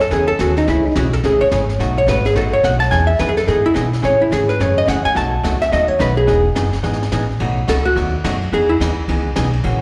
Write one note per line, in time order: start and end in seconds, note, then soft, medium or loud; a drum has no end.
0.00 0.11 F#2 medium
0.00 0.11 A4 medium
0.00 snare soft
0.10 0.39 E2 medium
0.10 0.31 C#3 medium
0.10 0.31 E3 medium
0.10 0.31 B3 medium
0.10 0.31 C#4 medium
0.10 0.31 G#4 medium
0.10 0.27 G#4 medium
0.10 brush sweep medium
0.10 snare soft
0.28 0.39 A4 loud
0.39 0.67 D#2 loud
0.39 0.51 C#3 medium
0.39 0.51 E3 medium
0.39 0.51 B3 medium
0.39 0.51 C#4 medium
0.39 0.57 F#4 medium
0.39 0.51 G#4 medium
0.39 snare medium
0.39 hi-hat pedal medium
0.56 0.68 D#4 medium
0.56 snare soft
0.67 0.95 C#2 medium
0.67 0.87 C#3 medium
0.67 0.87 E3 medium
0.67 0.87 A3 medium
0.67 0.87 C#4 medium
0.67 0.86 E4 medium
0.67 0.87 G#4 medium
0.67 brush sweep soft
0.67 snare soft
0.86 0.97 D#4 medium
0.95 1.23 B1 medium
0.95 1.07 C#3 medium
0.95 1.07 E3 medium
0.95 1.07 A3 medium
0.95 1.07 C#4 medium
0.95 1.13 F#4 medium
0.95 1.07 G#4 medium
0.95 snare medium
0.95 hi-hat pedal medium
1.13 1.24 A4 loud
1.13 snare soft
1.24 1.40 A1 medium
1.24 1.43 C#3 medium
1.24 1.43 E3 medium
1.24 1.44 A3 medium
1.24 1.44 C#4 medium
1.24 1.44 G#4 medium
1.24 1.41 G#4 medium
1.24 brush sweep soft
1.24 snare soft
1.41 1.47 C#5 loud
1.41 muted upright bass stroke soft
1.51 1.78 G#1 medium
1.51 1.63 C#3 medium
1.51 1.63 E3 medium
1.51 1.63 A3 medium
1.51 1.63 C#4 medium
1.51 1.63 G#4 medium
1.51 snare medium
1.51 hi-hat pedal medium
1.69 snare soft
1.79 2.06 B1 medium
1.79 1.99 B2 medium
1.79 1.99 F#3 medium
1.79 1.99 A3 medium
1.79 2.00 D#4 medium
1.79 2.00 F#4 medium
1.79 brush sweep medium
1.79 snare soft
1.98 2.08 C#5 medium
2.07 2.34 G#1 loud
2.07 2.18 B2 medium
2.07 2.19 F#3 medium
2.07 2.19 A3 medium
2.07 2.19 D#4 medium
2.07 2.19 F#4 medium
2.07 2.25 B4 medium
2.07 snare medium
2.07 hi-hat pedal medium
2.25 2.36 G#4 medium
2.25 snare soft
2.35 2.63 A1 medium
2.35 2.55 B2 medium
2.35 2.55 F#3 medium
2.35 2.55 A3 medium
2.35 2.55 D#4 medium
2.35 2.56 F#4 medium
2.35 2.53 A4 medium
2.35 brush sweep medium
2.35 snare soft
2.53 2.64 C#5 medium
2.63 2.91 B1 medium
2.63 2.75 B2 medium
2.63 2.75 F#3 medium
2.63 2.75 A3 medium
2.63 2.75 D#4 medium
2.63 2.75 F#4 medium
2.63 2.80 F#5 medium
2.63 snare medium
2.63 hi-hat pedal medium
2.80 2.91 A5 loud
2.80 snare soft
2.91 3.19 E2 medium
2.91 3.11 E3 medium
2.91 3.11 B3 medium
2.91 3.11 D#4 medium
2.91 3.12 G#4 medium
2.91 3.07 G#5 medium
2.91 brush sweep soft
2.91 snare soft
3.07 3.18 E5 medium
3.19 3.47 F#2 medium
3.19 3.30 E3 medium
3.19 3.31 B3 medium
3.19 3.31 D#4 medium
3.19 3.31 G#4 medium
3.19 3.29 B4 medium
3.19 snare medium
3.19 hi-hat pedal medium
3.29 3.37 G#4 medium
3.37 3.47 A4 medium
3.37 snare soft
3.47 3.75 G#2 medium
3.47 3.67 E3 medium
3.47 3.67 B3 medium
3.47 3.68 D#4 medium
3.47 3.65 G#4 medium
3.47 3.68 G#4 medium
3.47 brush sweep soft
3.47 snare soft
3.66 3.72 E4 loud
3.74 4.03 B2 loud
3.74 3.86 E3 medium
3.74 3.86 B3 medium
3.74 3.86 D#4 medium
3.74 3.87 G#4 medium
3.74 snare medium
3.74 hi-hat pedal medium
3.93 snare soft
4.02 4.31 A2 medium
4.02 4.23 C#3 medium
4.02 4.23 E3 medium
4.02 4.23 A3 medium
4.02 4.23 C#4 medium
4.02 4.23 G#4 medium
4.02 4.21 C#5 medium
4.02 brush sweep soft
4.02 snare soft
4.22 4.32 E4 medium
4.31 4.59 G#2 medium
4.31 4.42 C#3 medium
4.31 4.43 E3 medium
4.31 4.43 A3 medium
4.31 4.43 C#4 medium
4.31 4.43 G#4 medium
4.31 4.49 G#4 medium
4.31 snare medium
4.31 hi-hat pedal medium
4.49 4.61 B4 medium
4.49 snare soft
4.60 4.87 F#2 medium
4.60 4.79 C#3 medium
4.60 4.80 E3 medium
4.60 4.80 A3 medium
4.60 4.80 C#4 medium
4.60 4.80 G#4 medium
4.60 4.77 C#5 medium
4.60 brush sweep soft
4.60 snare soft
4.78 4.88 D#5 loud
4.87 5.04 E2 medium
4.87 4.98 C#3 medium
4.87 4.99 E3 medium
4.87 4.99 A3 medium
4.87 4.99 C#4 medium
4.87 4.99 G#4 medium
4.87 5.05 F#5 medium
4.87 snare medium
4.87 hi-hat pedal medium
5.05 5.16 G#5 loud
5.05 muted upright bass stroke soft
5.05 snare soft
5.15 5.43 B1 medium
5.15 5.35 B2 medium
5.15 5.35 F#3 medium
5.15 5.35 A3 medium
5.15 5.35 D#4 medium
5.15 5.36 F#4 medium
5.15 5.59 A5 loud
5.15 brush sweep medium
5.15 snare soft
5.43 5.71 C#2 loud
5.43 5.55 B2 medium
5.43 5.55 F#3 medium
5.43 5.55 A3 medium
5.43 5.55 D#4 medium
5.43 5.55 F#4 medium
5.43 snare medium
5.43 hi-hat pedal medium
5.62 5.72 E5 loud
5.62 snare soft
5.72 6.00 D#2 medium
5.72 5.91 B2 medium
5.72 5.92 F#3 medium
5.72 5.92 A3 medium
5.72 5.92 D#4 medium
5.72 5.92 F#4 medium
5.72 5.88 D#5 medium
5.72 brush sweep soft
5.72 snare medium
5.88 5.99 C#5 loud
5.99 6.27 B1 loud
5.99 6.11 B2 medium
5.99 6.11 F#3 medium
5.99 6.11 A3 medium
5.99 6.11 D#4 medium
5.99 6.11 F#4 medium
5.99 6.17 B4 medium
5.99 snare medium
5.99 hi-hat pedal medium
6.17 6.43 G#4 medium
6.27 6.55 E1 medium
6.27 6.47 E3 medium
6.27 6.47 B3 medium
6.27 6.47 D#4 medium
6.27 6.48 G#4 medium
6.27 brush sweep medium
6.27 snare soft
6.55 6.83 F#1 medium
6.55 6.67 E3 medium
6.55 6.67 B3 medium
6.55 6.67 D#4 medium
6.55 6.67 G#4 medium
6.55 snare medium
6.55 hi-hat pedal medium
6.73 snare soft
6.83 7.11 G#1 medium
6.83 7.03 E3 medium
6.83 7.03 B3 medium
6.83 7.04 D#4 medium
6.83 7.04 G#4 medium
6.83 brush sweep medium
6.83 snare soft
6.93 snare soft
7.02 snare medium
7.12 7.39 A1 loud
7.12 7.23 E3 medium
7.12 7.23 B3 medium
7.12 7.23 D#4 medium
7.12 7.24 G#4 medium
7.12 snare medium
7.12 hi-hat pedal medium
7.40 7.67 B1 medium
7.40 7.60 B2 medium
7.40 7.60 F#3 medium
7.40 7.60 A3 medium
7.40 7.60 D#4 medium
7.40 7.61 F#4 medium
7.40 ride medium
7.68 7.95 C#2 loud
7.68 7.79 B2 medium
7.68 7.79 F#3 medium
7.68 7.79 A3 medium
7.68 7.80 D#4 medium
7.68 7.80 F#4 medium
7.68 7.86 A4 medium
7.68 snare medium
7.68 hi-hat pedal medium
7.68 ride medium
7.85 7.96 F#4 medium
7.96 8.23 D#2 medium
7.96 8.16 B2 medium
7.96 8.16 F#3 medium
7.96 8.16 A3 medium
7.96 8.16 D#4 medium
7.96 8.16 F#4 medium
7.96 ride medium
8.24 8.52 F#2 medium
8.24 8.36 B2 medium
8.24 8.35 F#3 medium
8.24 8.36 A3 medium
8.24 8.36 D#4 medium
8.24 8.36 F#4 medium
8.24 snare medium
8.24 hi-hat pedal medium
8.24 ride medium
8.42 ride soft
8.52 8.80 E2 medium
8.52 8.72 E3 medium
8.52 8.72 B3 medium
8.52 8.72 D#4 medium
8.52 8.73 G#4 medium
8.52 8.70 G#4 medium
8.52 ride medium
8.69 8.76 E4 medium
8.80 9.08 D#2 medium
8.80 8.92 E3 medium
8.80 8.92 B3 medium
8.80 8.92 D#4 medium
8.80 8.92 G#4 medium
8.80 snare medium
8.80 hi-hat pedal medium
8.80 ride medium
9.08 9.35 C#2 medium
9.08 9.28 E3 medium
9.08 9.29 B3 medium
9.08 9.28 D#4 medium
9.08 9.29 G#4 medium
9.08 ride medium
9.36 9.63 B1 loud
9.36 9.47 E3 medium
9.36 9.47 B3 medium
9.36 9.47 D#4 medium
9.36 9.48 G#4 medium
9.36 snare medium
9.36 hi-hat pedal medium
9.36 ride medium
9.53 ride soft
9.63 9.81 A#1 medium
9.63 9.81 C#3 medium
9.63 9.81 E3 medium
9.63 9.81 A#3 medium
9.63 9.81 C#4 medium
9.63 9.81 F#4 medium
9.63 ride medium